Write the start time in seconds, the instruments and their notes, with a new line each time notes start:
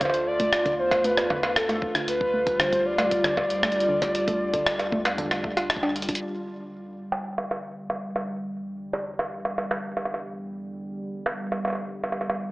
Already playing: sub bass D2, ambient pad D3 A3 F4
0.01 synth arpeggio sound D3, soft synth lead C5, kick, closed hi-hat, high bongo
0.05 high bongo
0.10 high bongo
0.14 closed hi-hat
0.27 soft synth lead D5
0.40 synth arpeggio sound A3, kick, closed hi-hat
0.53 cross-stick, closed hi-hat
0.66 synth arpeggio sound D3, kick, closed hi-hat
0.79 sub bass E2, soft synth lead C5
0.91 kick, closed hi-hat, cowbell, high bongo
1.04 synth arpeggio sound A3, soft synth lead B4, closed hi-hat
1.17 cross-stick, closed hi-hat, high bongo
1.30 synth arpeggio sound D3, kick, high bongo
1.43 cowbell, high bongo
1.56 soft synth lead A4, kick, cross-stick, closed hi-hat
1.69 synth arpeggio sound A3, closed hi-hat, high bongo
1.82 kick
1.95 synth arpeggio sound D3, cross-stick, closed hi-hat
2.08 sub bass D2, ambient pad G3, soft synth lead B4, closed hi-hat
2.21 kick
2.34 synth arpeggio sound A3
2.47 kick, closed hi-hat
2.60 synth arpeggio sound D3, soft synth lead C5, cross-stick, closed hi-hat
2.73 kick, closed hi-hat
2.86 soft synth lead D5
2.98 synth arpeggio sound A3, closed hi-hat, cowbell, high bongo
3.11 kick, closed hi-hat
3.24 synth arpeggio sound D3, cross-stick, closed hi-hat, high bongo
3.37 kick, high bongo
3.50 sub bass D2, closed hi-hat
3.63 synth arpeggio sound A3, kick, cross-stick, closed hi-hat
3.72 closed hi-hat
3.80 closed hi-hat
3.89 synth arpeggio sound D3
4.02 kick, closed hi-hat, high bongo
4.15 closed hi-hat
4.28 synth arpeggio sound A3, kick, closed hi-hat
4.53 synth arpeggio sound D3, kick, closed hi-hat
4.67 cross-stick, closed hi-hat
4.79 closed hi-hat, high bongo
4.92 sub bass E2, synth arpeggio sound A3, kick
5.05 closed hi-hat, cowbell, high bongo
5.18 synth arpeggio sound D3, kick, closed hi-hat
5.31 cross-stick, closed hi-hat, cowbell, high bongo
5.44 sub bass D2, synth arpeggio sound A3, kick
5.57 synth arpeggio sound F4, closed hi-hat, cowbell
5.70 cross-stick, closed hi-hat
5.76 kick
5.83 synth arpeggio sound D4, high bongo
5.96 closed hi-hat
6.02 closed hi-hat
6.09 synth arpeggio sound D4, kick, closed hi-hat
6.15 closed hi-hat
6.22 ambient pad E2 D3 G3
7.12 high bongo
7.38 high bongo
7.51 high bongo
7.90 high bongo
8.16 high bongo
8.93 high bongo
9.19 high bongo
9.45 high bongo
9.58 high bongo
9.71 high bongo
9.97 high bongo
10.05 high bongo
10.14 high bongo
11.26 high bongo
11.52 high bongo
11.65 high bongo
11.67 high bongo
11.70 high bongo
11.73 high bongo
11.75 high bongo
12.04 high bongo
12.12 high bongo
12.21 high bongo
12.30 high bongo